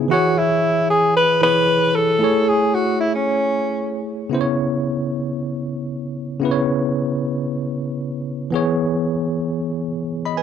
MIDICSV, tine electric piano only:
0, 0, Header, 1, 2, 480
1, 0, Start_track
1, 0, Key_signature, 4, "minor"
1, 0, Tempo, 526316
1, 98, Time_signature, 4, 2, 24, 8
1, 9509, End_track
2, 0, Start_track
2, 0, Title_t, "Tine electric piano"
2, 0, Program_c, 0, 4
2, 0, Control_c, 0, 64, 127
2, 0, Note_on_c, 0, 49, 65
2, 0, Note_on_c, 0, 59, 58
2, 0, Note_on_c, 0, 63, 47
2, 0, Note_on_c, 0, 64, 60
2, 0, Note_on_c, 0, 68, 70
2, 0, Note_on_c, 0, 73, 74
2, 76, Note_on_c, 0, 52, 66
2, 91, Note_off_c, 0, 64, 0
2, 91, Note_on_c, 0, 64, 60
2, 93, Note_off_c, 0, 49, 0
2, 95, Note_off_c, 0, 68, 0
2, 97, Note_off_c, 0, 59, 0
2, 106, Note_on_c, 0, 68, 64
2, 110, Control_c, 0, 64, 0
2, 112, Note_off_c, 0, 63, 0
2, 113, Note_off_c, 0, 73, 0
2, 121, Note_on_c, 0, 73, 76
2, 275, Control_c, 0, 64, 127
2, 1263, Note_off_c, 0, 52, 0
2, 1271, Note_off_c, 0, 64, 0
2, 1278, Note_off_c, 0, 68, 0
2, 1286, Note_off_c, 0, 73, 0
2, 1288, Note_on_c, 0, 52, 52
2, 1296, Note_on_c, 0, 64, 50
2, 1304, Note_on_c, 0, 68, 48
2, 1310, Note_on_c, 0, 73, 60
2, 1997, Note_on_c, 0, 57, 69
2, 2001, Note_off_c, 0, 64, 0
2, 2012, Note_on_c, 0, 64, 60
2, 2013, Note_off_c, 0, 52, 0
2, 2017, Note_off_c, 0, 68, 0
2, 2024, Note_off_c, 0, 73, 0
2, 2027, Note_on_c, 0, 68, 62
2, 2029, Control_c, 0, 64, 0
2, 2043, Note_on_c, 0, 73, 74
2, 2215, Control_c, 0, 64, 127
2, 3891, Note_off_c, 0, 57, 0
2, 3899, Note_off_c, 0, 64, 0
2, 3906, Note_off_c, 0, 68, 0
2, 3914, Note_off_c, 0, 73, 0
2, 3917, Note_on_c, 0, 49, 73
2, 3932, Note_on_c, 0, 59, 64
2, 3948, Note_on_c, 0, 64, 69
2, 3950, Control_c, 0, 64, 0
2, 3963, Note_on_c, 0, 72, 64
2, 4014, Note_off_c, 0, 72, 0
2, 4021, Note_on_c, 0, 73, 81
2, 4112, Control_c, 0, 64, 127
2, 5811, Note_off_c, 0, 49, 0
2, 5819, Note_off_c, 0, 59, 0
2, 5827, Note_off_c, 0, 64, 0
2, 5836, Note_on_c, 0, 49, 73
2, 5851, Note_on_c, 0, 59, 64
2, 5863, Note_off_c, 0, 73, 0
2, 5867, Note_on_c, 0, 64, 65
2, 5882, Note_on_c, 0, 71, 67
2, 5934, Note_off_c, 0, 71, 0
2, 5940, Note_on_c, 0, 73, 81
2, 7731, Note_off_c, 0, 49, 0
2, 7738, Note_off_c, 0, 59, 0
2, 7746, Note_off_c, 0, 64, 0
2, 7757, Note_on_c, 0, 52, 73
2, 7772, Note_on_c, 0, 59, 66
2, 7783, Note_off_c, 0, 73, 0
2, 7787, Note_on_c, 0, 68, 70
2, 7790, Control_c, 0, 64, 0
2, 7803, Note_on_c, 0, 73, 83
2, 7955, Control_c, 0, 64, 127
2, 8959, Note_off_c, 0, 68, 0
2, 8967, Note_off_c, 0, 73, 0
2, 9352, Note_on_c, 0, 83, 68
2, 9357, Note_on_c, 0, 75, 56
2, 9454, Note_off_c, 0, 83, 0
2, 9457, Note_off_c, 0, 75, 0
2, 9461, Note_on_c, 0, 80, 67
2, 9466, Note_on_c, 0, 71, 60
2, 9509, Note_off_c, 0, 52, 0
2, 9509, Note_off_c, 0, 59, 0
2, 9509, Note_off_c, 0, 71, 0
2, 9509, Note_off_c, 0, 80, 0
2, 9509, End_track
0, 0, End_of_file